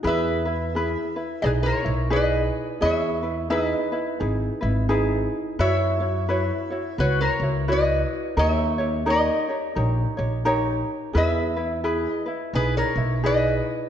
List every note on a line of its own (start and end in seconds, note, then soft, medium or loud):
0.03 0.94 E2 medium
0.03 0.46 E4 loud
0.03 0.45 G#4 medium
0.03 0.44 B4 medium
0.07 1.41 B4 medium
0.07 1.49 E5 loud
0.45 0.74 E4 soft
0.45 0.73 B4 medium
0.75 1.15 E4 medium
0.75 1.16 G#4 medium
0.75 1.15 B4 medium
1.16 1.43 E4 soft
1.16 1.43 B4 medium
1.42 1.71 B1 medium
1.42 1.84 D#4 medium
1.42 1.83 E4 medium
1.42 1.85 G#4 medium
1.42 1.51 G#4 medium
1.42 1.48 B4 medium
1.42 1.86 B4 medium
1.63 2.10 A#4 medium
1.63 2.12 C#5 medium
1.84 2.48 B1 medium
1.84 2.10 D#4 soft
1.84 2.10 E4 soft
2.10 2.81 D#4 medium
2.10 2.80 E4 medium
2.10 2.81 G#4 medium
2.10 2.82 B4 medium
2.10 2.82 D#5 medium
2.16 2.80 B4 medium
2.81 3.72 E2 medium
2.81 3.22 E4 medium
2.81 3.23 G#4 medium
2.81 3.21 B4 medium
2.81 2.93 D#5 loud
2.85 3.49 C#5 medium
2.93 3.50 E5 loud
3.23 3.49 E4 soft
3.23 3.50 B4 medium
3.50 3.92 D#4 medium
3.50 3.91 E4 medium
3.50 3.92 G#4 medium
3.50 3.91 B4 medium
3.50 4.87 B4 medium
3.50 4.86 D#5 medium
3.92 4.19 D#4 soft
3.92 4.19 E4 soft
3.92 4.20 B4 medium
4.20 4.48 G#1 medium
4.20 4.62 D#4 medium
4.20 4.61 E4 medium
4.20 4.62 G#4 medium
4.20 4.60 B4 medium
4.61 5.26 G#1 medium
4.61 4.88 D#4 soft
4.61 4.89 E4 soft
4.61 4.89 B4 medium
4.89 5.59 D#4 medium
4.89 5.59 E4 medium
4.89 5.59 G#4 medium
4.89 5.59 B4 medium
5.59 6.50 F#2 loud
5.59 6.01 E4 medium
5.59 5.99 F#4 loud
5.59 6.00 B4 medium
5.59 6.95 C#5 medium
5.59 5.99 C#5 medium
5.59 7.03 E5 loud
6.00 6.28 E4 soft
6.00 6.29 F#4 medium
6.00 6.28 C#5 medium
6.29 6.71 E4 medium
6.29 6.70 F#4 medium
6.29 6.70 B4 medium
6.29 6.69 C#5 medium
6.70 6.98 E4 soft
6.70 6.98 F#4 medium
6.70 6.98 C#5 medium
6.98 7.26 C#2 medium
6.98 7.41 E4 medium
6.98 7.41 F#4 medium
6.98 7.19 F#4 medium
6.98 7.40 B4 medium
6.98 7.21 B4 medium
6.98 7.40 C#5 medium
7.21 7.66 A#4 medium
7.21 7.70 C#5 medium
7.40 8.03 C#2 medium
7.40 7.67 E4 soft
7.40 7.67 F#4 soft
7.40 7.68 C#5 soft
7.68 8.37 E4 medium
7.68 8.37 F#4 medium
7.68 8.36 B4 medium
7.68 8.35 B4 medium
7.68 8.38 C#5 medium
7.73 8.39 D#5 medium
8.37 9.27 D#2 loud
8.37 8.79 D#4 medium
8.37 8.78 G4 medium
8.37 8.79 A#4 medium
8.37 8.77 C#5 medium
8.37 9.04 C#5 medium
8.37 8.50 D#5 loud
8.50 9.10 E5 loud
8.78 9.05 D#4 soft
8.78 9.06 G4 medium
8.78 9.06 C#5 medium
9.06 9.48 D#4 medium
9.06 9.48 G4 medium
9.06 9.48 A#4 medium
9.06 9.47 C#5 medium
9.10 10.44 A#4 medium
9.10 10.43 D#5 medium
9.48 9.75 D#4 soft
9.48 9.75 G4 soft
9.48 9.75 C#5 soft
9.75 10.04 A#1 medium
9.75 10.18 D#4 medium
9.75 10.17 G4 medium
9.75 10.18 A#4 medium
9.75 10.16 C#5 medium
10.17 10.81 A#1 medium
10.17 10.44 D#4 soft
10.17 10.44 G4 soft
10.17 10.45 C#5 medium
10.45 11.14 D#4 loud
10.45 11.13 G4 medium
10.45 11.15 A#4 medium
10.45 11.15 C#5 medium
11.13 12.05 E2 loud
11.13 11.56 E4 medium
11.13 11.56 G#4 medium
11.13 11.55 B4 medium
11.13 12.51 B4 medium
11.18 12.10 E5 loud
11.56 11.83 E4 medium
11.56 11.83 B4 medium
11.84 12.26 E4 medium
11.84 12.26 G#4 medium
11.84 12.25 B4 medium
12.10 12.60 D#5 loud
12.26 12.55 E4 medium
12.26 12.54 B4 medium
12.53 12.81 B1 medium
12.53 12.97 D#4 medium
12.53 12.96 E4 medium
12.53 12.96 G#4 medium
12.53 12.75 G#4 medium
12.53 12.76 B4 medium
12.53 12.97 B4 medium
12.77 13.22 A#4 medium
12.77 13.26 C#5 medium
12.96 13.59 B1 medium
12.96 13.22 D#4 soft
12.96 13.23 E4 soft
13.23 13.89 D#4 medium
13.23 13.89 E4 medium
13.23 13.89 G#4 medium
13.23 13.89 B4 medium
13.23 13.89 D#5 loud